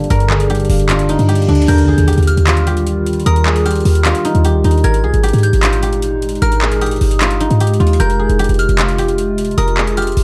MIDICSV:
0, 0, Header, 1, 9, 480
1, 0, Start_track
1, 0, Key_signature, -3, "major"
1, 0, Tempo, 394737
1, 125, Time_signature, 4, 2, 24, 8
1, 12447, End_track
2, 0, Start_track
2, 0, Title_t, "Synth bell"
2, 0, Program_c, 0, 98
2, 2046, Note_on_c, 0, 91, 107
2, 2723, Note_off_c, 0, 91, 0
2, 2765, Note_on_c, 0, 89, 99
2, 3917, Note_off_c, 0, 89, 0
2, 3966, Note_on_c, 0, 87, 105
2, 4417, Note_off_c, 0, 87, 0
2, 4447, Note_on_c, 0, 89, 93
2, 5358, Note_off_c, 0, 89, 0
2, 5886, Note_on_c, 0, 92, 96
2, 6563, Note_off_c, 0, 92, 0
2, 6605, Note_on_c, 0, 91, 83
2, 7757, Note_off_c, 0, 91, 0
2, 7805, Note_on_c, 0, 89, 109
2, 8257, Note_off_c, 0, 89, 0
2, 8287, Note_on_c, 0, 87, 89
2, 9678, Note_off_c, 0, 87, 0
2, 9726, Note_on_c, 0, 91, 107
2, 10403, Note_off_c, 0, 91, 0
2, 10446, Note_on_c, 0, 89, 94
2, 11597, Note_off_c, 0, 89, 0
2, 11645, Note_on_c, 0, 87, 105
2, 12097, Note_off_c, 0, 87, 0
2, 12126, Note_on_c, 0, 89, 100
2, 12447, Note_off_c, 0, 89, 0
2, 12447, End_track
3, 0, Start_track
3, 0, Title_t, "Guzheng"
3, 0, Program_c, 1, 107
3, 0, Note_on_c, 1, 62, 75
3, 0, Note_on_c, 1, 65, 80
3, 0, Note_on_c, 1, 67, 77
3, 125, Note_on_c, 1, 70, 108
3, 366, Note_on_c, 1, 68, 65
3, 438, Note_off_c, 1, 67, 0
3, 606, Note_on_c, 1, 67, 90
3, 679, Note_off_c, 1, 68, 0
3, 1082, Note_off_c, 1, 65, 0
3, 1087, Note_on_c, 1, 65, 85
3, 1328, Note_on_c, 1, 63, 85
3, 1401, Note_off_c, 1, 62, 0
3, 1557, Note_off_c, 1, 67, 0
3, 1562, Note_on_c, 1, 67, 91
3, 1807, Note_on_c, 1, 62, 83
3, 1880, Note_off_c, 1, 63, 0
3, 2042, Note_off_c, 1, 70, 0
3, 2047, Note_on_c, 1, 70, 101
3, 2288, Note_on_c, 1, 68, 72
3, 2361, Note_off_c, 1, 67, 0
3, 2524, Note_on_c, 1, 67, 94
3, 2597, Note_off_c, 1, 68, 0
3, 3000, Note_off_c, 1, 65, 0
3, 3005, Note_on_c, 1, 65, 88
3, 3239, Note_off_c, 1, 67, 0
3, 3244, Note_on_c, 1, 67, 82
3, 3960, Note_off_c, 1, 70, 0
3, 3965, Note_on_c, 1, 70, 112
3, 4207, Note_on_c, 1, 68, 75
3, 4280, Note_off_c, 1, 67, 0
3, 4445, Note_on_c, 1, 67, 83
3, 4518, Note_off_c, 1, 68, 0
3, 4923, Note_off_c, 1, 65, 0
3, 4928, Note_on_c, 1, 65, 88
3, 5166, Note_on_c, 1, 63, 84
3, 5239, Note_off_c, 1, 62, 0
3, 5403, Note_off_c, 1, 67, 0
3, 5408, Note_on_c, 1, 67, 92
3, 5642, Note_off_c, 1, 63, 0
3, 5647, Note_on_c, 1, 63, 78
3, 5881, Note_off_c, 1, 70, 0
3, 5886, Note_on_c, 1, 70, 108
3, 6124, Note_on_c, 1, 68, 76
3, 6197, Note_off_c, 1, 67, 0
3, 6364, Note_on_c, 1, 67, 98
3, 6437, Note_off_c, 1, 68, 0
3, 6839, Note_off_c, 1, 65, 0
3, 6844, Note_on_c, 1, 65, 85
3, 7080, Note_off_c, 1, 67, 0
3, 7085, Note_on_c, 1, 67, 84
3, 7801, Note_off_c, 1, 70, 0
3, 7806, Note_on_c, 1, 70, 111
3, 8047, Note_on_c, 1, 68, 70
3, 8120, Note_off_c, 1, 67, 0
3, 8286, Note_on_c, 1, 67, 85
3, 8359, Note_off_c, 1, 68, 0
3, 8762, Note_off_c, 1, 65, 0
3, 8767, Note_on_c, 1, 65, 95
3, 8935, Note_off_c, 1, 63, 0
3, 9004, Note_on_c, 1, 63, 88
3, 9242, Note_off_c, 1, 67, 0
3, 9247, Note_on_c, 1, 67, 88
3, 9479, Note_off_c, 1, 65, 0
3, 9484, Note_on_c, 1, 65, 78
3, 9721, Note_off_c, 1, 70, 0
3, 9726, Note_on_c, 1, 70, 103
3, 9964, Note_on_c, 1, 68, 72
3, 10037, Note_off_c, 1, 67, 0
3, 10205, Note_on_c, 1, 67, 105
3, 10278, Note_off_c, 1, 68, 0
3, 10682, Note_off_c, 1, 65, 0
3, 10687, Note_on_c, 1, 65, 85
3, 10922, Note_off_c, 1, 67, 0
3, 10926, Note_on_c, 1, 67, 79
3, 11642, Note_off_c, 1, 70, 0
3, 11646, Note_on_c, 1, 70, 112
3, 11887, Note_on_c, 1, 68, 69
3, 11960, Note_off_c, 1, 67, 0
3, 12126, Note_on_c, 1, 67, 80
3, 12199, Note_off_c, 1, 68, 0
3, 12292, Note_off_c, 1, 63, 0
3, 12447, Note_off_c, 1, 65, 0
3, 12447, Note_off_c, 1, 67, 0
3, 12447, Note_off_c, 1, 70, 0
3, 12447, End_track
4, 0, Start_track
4, 0, Title_t, "Harp"
4, 0, Program_c, 2, 46
4, 0, Note_on_c, 2, 50, 76
4, 0, Note_on_c, 2, 58, 88
4, 0, Note_on_c, 2, 60, 81
4, 0, Note_on_c, 2, 62, 105
4, 0, Note_on_c, 2, 65, 86
4, 125, Note_on_c, 2, 43, 93
4, 350, Note_off_c, 2, 50, 0
4, 365, Note_on_c, 2, 50, 84
4, 553, Note_off_c, 2, 65, 0
4, 605, Note_on_c, 2, 55, 88
4, 841, Note_off_c, 2, 58, 0
4, 846, Note_on_c, 2, 58, 88
4, 1080, Note_off_c, 2, 62, 0
4, 1085, Note_on_c, 2, 62, 96
4, 1321, Note_off_c, 2, 58, 0
4, 1326, Note_on_c, 2, 58, 78
4, 1374, Note_off_c, 2, 60, 0
4, 1553, Note_off_c, 2, 55, 0
4, 1567, Note_on_c, 2, 55, 86
4, 1790, Note_off_c, 2, 50, 0
4, 1805, Note_on_c, 2, 50, 77
4, 1867, Note_off_c, 2, 55, 0
4, 2107, Note_off_c, 2, 43, 0
4, 2107, Note_off_c, 2, 50, 0
4, 4489, Note_off_c, 2, 62, 0
4, 5236, Note_off_c, 2, 58, 0
4, 12447, End_track
5, 0, Start_track
5, 0, Title_t, "Ambient pad"
5, 0, Program_c, 3, 92
5, 2046, Note_on_c, 3, 65, 94
5, 2047, Note_on_c, 3, 51, 84
5, 2047, Note_on_c, 3, 55, 79
5, 5848, Note_off_c, 3, 51, 0
5, 5848, Note_off_c, 3, 55, 0
5, 5848, Note_off_c, 3, 65, 0
5, 5886, Note_on_c, 3, 63, 92
5, 5887, Note_on_c, 3, 46, 85
5, 5887, Note_on_c, 3, 56, 79
5, 9688, Note_off_c, 3, 46, 0
5, 9688, Note_off_c, 3, 63, 0
5, 9726, Note_on_c, 3, 48, 84
5, 9726, Note_on_c, 3, 65, 92
5, 12447, Note_off_c, 3, 48, 0
5, 12447, Note_off_c, 3, 56, 0
5, 12447, Note_off_c, 3, 65, 0
5, 12447, End_track
6, 0, Start_track
6, 0, Title_t, "808-style bass"
6, 0, Program_c, 4, 38
6, 126, Note_on_c, 4, 31, 109
6, 817, Note_off_c, 4, 31, 0
6, 846, Note_on_c, 4, 29, 106
6, 1422, Note_off_c, 4, 29, 0
6, 1446, Note_on_c, 4, 43, 104
6, 1792, Note_off_c, 4, 43, 0
6, 1806, Note_on_c, 4, 38, 110
6, 2036, Note_off_c, 4, 38, 0
6, 2046, Note_on_c, 4, 39, 116
6, 2391, Note_off_c, 4, 39, 0
6, 2406, Note_on_c, 4, 39, 101
6, 2636, Note_off_c, 4, 39, 0
6, 2646, Note_on_c, 4, 39, 102
6, 2876, Note_off_c, 4, 39, 0
6, 2886, Note_on_c, 4, 39, 104
6, 3923, Note_off_c, 4, 39, 0
6, 3967, Note_on_c, 4, 39, 113
6, 4658, Note_off_c, 4, 39, 0
6, 4686, Note_on_c, 4, 39, 106
6, 5032, Note_off_c, 4, 39, 0
6, 5286, Note_on_c, 4, 39, 109
6, 5526, Note_on_c, 4, 38, 104
6, 5545, Note_off_c, 4, 39, 0
6, 5640, Note_off_c, 4, 38, 0
6, 5646, Note_on_c, 4, 39, 108
6, 5876, Note_off_c, 4, 39, 0
6, 5886, Note_on_c, 4, 32, 111
6, 6126, Note_on_c, 4, 36, 98
6, 6144, Note_off_c, 4, 32, 0
6, 6240, Note_off_c, 4, 36, 0
6, 6246, Note_on_c, 4, 32, 99
6, 6476, Note_off_c, 4, 32, 0
6, 6486, Note_on_c, 4, 44, 103
6, 6716, Note_off_c, 4, 44, 0
6, 6726, Note_on_c, 4, 32, 104
6, 7763, Note_off_c, 4, 32, 0
6, 7806, Note_on_c, 4, 32, 110
6, 8497, Note_off_c, 4, 32, 0
6, 8526, Note_on_c, 4, 31, 107
6, 9102, Note_off_c, 4, 31, 0
6, 9126, Note_on_c, 4, 44, 107
6, 9472, Note_off_c, 4, 44, 0
6, 9486, Note_on_c, 4, 39, 104
6, 9716, Note_off_c, 4, 39, 0
6, 9726, Note_on_c, 4, 29, 116
6, 10072, Note_off_c, 4, 29, 0
6, 10086, Note_on_c, 4, 29, 101
6, 10316, Note_off_c, 4, 29, 0
6, 10326, Note_on_c, 4, 29, 103
6, 10556, Note_off_c, 4, 29, 0
6, 10566, Note_on_c, 4, 29, 105
6, 11603, Note_off_c, 4, 29, 0
6, 11646, Note_on_c, 4, 29, 109
6, 12337, Note_off_c, 4, 29, 0
6, 12366, Note_on_c, 4, 29, 107
6, 12447, Note_off_c, 4, 29, 0
6, 12447, End_track
7, 0, Start_track
7, 0, Title_t, "Impact"
7, 0, Program_c, 5, 103
7, 2046, Note_on_c, 5, 60, 89
7, 3966, Note_off_c, 5, 60, 0
7, 12447, End_track
8, 0, Start_track
8, 0, Title_t, "Reverse cymbal"
8, 0, Program_c, 6, 119
8, 1086, Note_on_c, 6, 60, 82
8, 2046, Note_off_c, 6, 60, 0
8, 12447, End_track
9, 0, Start_track
9, 0, Title_t, "Drums"
9, 46, Note_on_c, 9, 42, 36
9, 125, Note_off_c, 9, 42, 0
9, 125, Note_on_c, 9, 42, 82
9, 246, Note_off_c, 9, 42, 0
9, 246, Note_on_c, 9, 42, 49
9, 366, Note_on_c, 9, 39, 100
9, 368, Note_off_c, 9, 42, 0
9, 486, Note_on_c, 9, 42, 61
9, 488, Note_off_c, 9, 39, 0
9, 606, Note_off_c, 9, 42, 0
9, 606, Note_on_c, 9, 42, 62
9, 666, Note_off_c, 9, 42, 0
9, 666, Note_on_c, 9, 42, 55
9, 726, Note_off_c, 9, 42, 0
9, 726, Note_on_c, 9, 42, 45
9, 786, Note_off_c, 9, 42, 0
9, 786, Note_on_c, 9, 42, 39
9, 846, Note_on_c, 9, 46, 77
9, 908, Note_off_c, 9, 42, 0
9, 967, Note_off_c, 9, 46, 0
9, 967, Note_on_c, 9, 42, 60
9, 1086, Note_off_c, 9, 42, 0
9, 1086, Note_on_c, 9, 39, 107
9, 1086, Note_on_c, 9, 42, 89
9, 1204, Note_off_c, 9, 42, 0
9, 1204, Note_on_c, 9, 42, 54
9, 1208, Note_off_c, 9, 39, 0
9, 1325, Note_off_c, 9, 42, 0
9, 1325, Note_on_c, 9, 42, 74
9, 1446, Note_off_c, 9, 42, 0
9, 1447, Note_on_c, 9, 42, 56
9, 1566, Note_off_c, 9, 42, 0
9, 1566, Note_on_c, 9, 42, 80
9, 1646, Note_off_c, 9, 42, 0
9, 1646, Note_on_c, 9, 42, 63
9, 1726, Note_off_c, 9, 42, 0
9, 1726, Note_on_c, 9, 42, 48
9, 1806, Note_off_c, 9, 42, 0
9, 1806, Note_on_c, 9, 42, 37
9, 1886, Note_off_c, 9, 42, 0
9, 1886, Note_on_c, 9, 42, 50
9, 1966, Note_off_c, 9, 42, 0
9, 1966, Note_on_c, 9, 42, 59
9, 2046, Note_off_c, 9, 42, 0
9, 2046, Note_on_c, 9, 42, 83
9, 2047, Note_on_c, 9, 49, 105
9, 2166, Note_off_c, 9, 42, 0
9, 2166, Note_on_c, 9, 42, 52
9, 2168, Note_off_c, 9, 49, 0
9, 2288, Note_off_c, 9, 42, 0
9, 2406, Note_on_c, 9, 42, 61
9, 2526, Note_off_c, 9, 42, 0
9, 2526, Note_on_c, 9, 42, 66
9, 2587, Note_off_c, 9, 42, 0
9, 2587, Note_on_c, 9, 42, 55
9, 2647, Note_off_c, 9, 42, 0
9, 2647, Note_on_c, 9, 42, 46
9, 2706, Note_off_c, 9, 42, 0
9, 2706, Note_on_c, 9, 42, 39
9, 2766, Note_off_c, 9, 42, 0
9, 2766, Note_on_c, 9, 42, 80
9, 2886, Note_off_c, 9, 42, 0
9, 2886, Note_on_c, 9, 42, 63
9, 3006, Note_off_c, 9, 42, 0
9, 3006, Note_on_c, 9, 39, 116
9, 3006, Note_on_c, 9, 42, 87
9, 3123, Note_off_c, 9, 42, 0
9, 3123, Note_on_c, 9, 42, 58
9, 3127, Note_off_c, 9, 39, 0
9, 3245, Note_off_c, 9, 42, 0
9, 3245, Note_on_c, 9, 42, 77
9, 3366, Note_off_c, 9, 42, 0
9, 3366, Note_on_c, 9, 42, 58
9, 3485, Note_off_c, 9, 42, 0
9, 3485, Note_on_c, 9, 42, 80
9, 3606, Note_off_c, 9, 42, 0
9, 3726, Note_on_c, 9, 42, 62
9, 3806, Note_off_c, 9, 42, 0
9, 3806, Note_on_c, 9, 42, 47
9, 3886, Note_off_c, 9, 42, 0
9, 3886, Note_on_c, 9, 42, 36
9, 3966, Note_off_c, 9, 42, 0
9, 3966, Note_on_c, 9, 42, 88
9, 4086, Note_off_c, 9, 42, 0
9, 4086, Note_on_c, 9, 42, 52
9, 4207, Note_on_c, 9, 39, 102
9, 4208, Note_off_c, 9, 42, 0
9, 4326, Note_on_c, 9, 42, 64
9, 4328, Note_off_c, 9, 39, 0
9, 4446, Note_off_c, 9, 42, 0
9, 4446, Note_on_c, 9, 42, 65
9, 4506, Note_off_c, 9, 42, 0
9, 4506, Note_on_c, 9, 42, 54
9, 4566, Note_off_c, 9, 42, 0
9, 4566, Note_on_c, 9, 42, 48
9, 4626, Note_off_c, 9, 42, 0
9, 4626, Note_on_c, 9, 42, 38
9, 4686, Note_on_c, 9, 46, 79
9, 4748, Note_off_c, 9, 42, 0
9, 4806, Note_on_c, 9, 42, 64
9, 4807, Note_off_c, 9, 46, 0
9, 4926, Note_off_c, 9, 42, 0
9, 4926, Note_on_c, 9, 39, 114
9, 4926, Note_on_c, 9, 42, 91
9, 5044, Note_off_c, 9, 42, 0
9, 5044, Note_on_c, 9, 42, 56
9, 5047, Note_off_c, 9, 39, 0
9, 5165, Note_off_c, 9, 42, 0
9, 5165, Note_on_c, 9, 42, 76
9, 5287, Note_off_c, 9, 42, 0
9, 5287, Note_on_c, 9, 42, 58
9, 5406, Note_off_c, 9, 42, 0
9, 5406, Note_on_c, 9, 42, 81
9, 5527, Note_off_c, 9, 42, 0
9, 5646, Note_on_c, 9, 42, 63
9, 5726, Note_off_c, 9, 42, 0
9, 5726, Note_on_c, 9, 42, 49
9, 5806, Note_off_c, 9, 42, 0
9, 5806, Note_on_c, 9, 42, 36
9, 5886, Note_off_c, 9, 42, 0
9, 5886, Note_on_c, 9, 42, 83
9, 6006, Note_off_c, 9, 42, 0
9, 6006, Note_on_c, 9, 42, 50
9, 6128, Note_off_c, 9, 42, 0
9, 6246, Note_on_c, 9, 42, 60
9, 6366, Note_off_c, 9, 42, 0
9, 6366, Note_on_c, 9, 42, 63
9, 6426, Note_off_c, 9, 42, 0
9, 6426, Note_on_c, 9, 42, 57
9, 6486, Note_off_c, 9, 42, 0
9, 6486, Note_on_c, 9, 42, 46
9, 6546, Note_off_c, 9, 42, 0
9, 6546, Note_on_c, 9, 42, 38
9, 6606, Note_off_c, 9, 42, 0
9, 6606, Note_on_c, 9, 42, 81
9, 6727, Note_off_c, 9, 42, 0
9, 6727, Note_on_c, 9, 42, 61
9, 6846, Note_off_c, 9, 42, 0
9, 6846, Note_on_c, 9, 42, 90
9, 6847, Note_on_c, 9, 39, 114
9, 6964, Note_off_c, 9, 42, 0
9, 6964, Note_on_c, 9, 42, 58
9, 6968, Note_off_c, 9, 39, 0
9, 7084, Note_off_c, 9, 42, 0
9, 7084, Note_on_c, 9, 42, 78
9, 7206, Note_off_c, 9, 42, 0
9, 7206, Note_on_c, 9, 42, 60
9, 7325, Note_off_c, 9, 42, 0
9, 7325, Note_on_c, 9, 42, 82
9, 7446, Note_off_c, 9, 42, 0
9, 7566, Note_on_c, 9, 42, 62
9, 7646, Note_off_c, 9, 42, 0
9, 7646, Note_on_c, 9, 42, 47
9, 7726, Note_off_c, 9, 42, 0
9, 7726, Note_on_c, 9, 42, 36
9, 7805, Note_off_c, 9, 42, 0
9, 7805, Note_on_c, 9, 42, 84
9, 7926, Note_off_c, 9, 42, 0
9, 7926, Note_on_c, 9, 42, 51
9, 8046, Note_on_c, 9, 39, 106
9, 8047, Note_off_c, 9, 42, 0
9, 8166, Note_on_c, 9, 42, 62
9, 8168, Note_off_c, 9, 39, 0
9, 8286, Note_off_c, 9, 42, 0
9, 8286, Note_on_c, 9, 42, 65
9, 8346, Note_off_c, 9, 42, 0
9, 8346, Note_on_c, 9, 42, 55
9, 8406, Note_off_c, 9, 42, 0
9, 8406, Note_on_c, 9, 42, 47
9, 8465, Note_off_c, 9, 42, 0
9, 8465, Note_on_c, 9, 42, 39
9, 8525, Note_on_c, 9, 46, 77
9, 8587, Note_off_c, 9, 42, 0
9, 8646, Note_off_c, 9, 46, 0
9, 8646, Note_on_c, 9, 42, 61
9, 8766, Note_off_c, 9, 42, 0
9, 8766, Note_on_c, 9, 39, 116
9, 8766, Note_on_c, 9, 42, 89
9, 8884, Note_off_c, 9, 42, 0
9, 8884, Note_on_c, 9, 42, 56
9, 8887, Note_off_c, 9, 39, 0
9, 9005, Note_off_c, 9, 42, 0
9, 9005, Note_on_c, 9, 42, 73
9, 9126, Note_off_c, 9, 42, 0
9, 9126, Note_on_c, 9, 42, 58
9, 9246, Note_off_c, 9, 42, 0
9, 9246, Note_on_c, 9, 42, 82
9, 9326, Note_off_c, 9, 42, 0
9, 9326, Note_on_c, 9, 42, 67
9, 9406, Note_off_c, 9, 42, 0
9, 9406, Note_on_c, 9, 42, 50
9, 9486, Note_off_c, 9, 42, 0
9, 9486, Note_on_c, 9, 42, 38
9, 9567, Note_off_c, 9, 42, 0
9, 9567, Note_on_c, 9, 42, 51
9, 9646, Note_off_c, 9, 42, 0
9, 9646, Note_on_c, 9, 42, 63
9, 9726, Note_off_c, 9, 42, 0
9, 9726, Note_on_c, 9, 42, 84
9, 9846, Note_off_c, 9, 42, 0
9, 9846, Note_on_c, 9, 42, 52
9, 9968, Note_off_c, 9, 42, 0
9, 10087, Note_on_c, 9, 42, 62
9, 10206, Note_off_c, 9, 42, 0
9, 10206, Note_on_c, 9, 42, 65
9, 10266, Note_off_c, 9, 42, 0
9, 10266, Note_on_c, 9, 42, 56
9, 10326, Note_off_c, 9, 42, 0
9, 10326, Note_on_c, 9, 42, 46
9, 10386, Note_off_c, 9, 42, 0
9, 10386, Note_on_c, 9, 42, 38
9, 10445, Note_off_c, 9, 42, 0
9, 10445, Note_on_c, 9, 42, 75
9, 10566, Note_off_c, 9, 42, 0
9, 10566, Note_on_c, 9, 42, 62
9, 10686, Note_off_c, 9, 42, 0
9, 10686, Note_on_c, 9, 39, 116
9, 10686, Note_on_c, 9, 42, 87
9, 10804, Note_off_c, 9, 42, 0
9, 10804, Note_on_c, 9, 42, 58
9, 10808, Note_off_c, 9, 39, 0
9, 10925, Note_off_c, 9, 42, 0
9, 10925, Note_on_c, 9, 42, 74
9, 11046, Note_off_c, 9, 42, 0
9, 11046, Note_on_c, 9, 42, 58
9, 11165, Note_off_c, 9, 42, 0
9, 11165, Note_on_c, 9, 42, 79
9, 11287, Note_off_c, 9, 42, 0
9, 11406, Note_on_c, 9, 42, 59
9, 11486, Note_off_c, 9, 42, 0
9, 11486, Note_on_c, 9, 42, 47
9, 11566, Note_off_c, 9, 42, 0
9, 11566, Note_on_c, 9, 42, 37
9, 11646, Note_off_c, 9, 42, 0
9, 11646, Note_on_c, 9, 42, 84
9, 11766, Note_off_c, 9, 42, 0
9, 11766, Note_on_c, 9, 42, 49
9, 11887, Note_on_c, 9, 39, 106
9, 11888, Note_off_c, 9, 42, 0
9, 12007, Note_on_c, 9, 42, 61
9, 12008, Note_off_c, 9, 39, 0
9, 12126, Note_off_c, 9, 42, 0
9, 12126, Note_on_c, 9, 42, 66
9, 12186, Note_off_c, 9, 42, 0
9, 12186, Note_on_c, 9, 42, 57
9, 12246, Note_off_c, 9, 42, 0
9, 12246, Note_on_c, 9, 42, 49
9, 12306, Note_off_c, 9, 42, 0
9, 12306, Note_on_c, 9, 42, 39
9, 12365, Note_on_c, 9, 46, 78
9, 12428, Note_off_c, 9, 42, 0
9, 12447, Note_off_c, 9, 46, 0
9, 12447, End_track
0, 0, End_of_file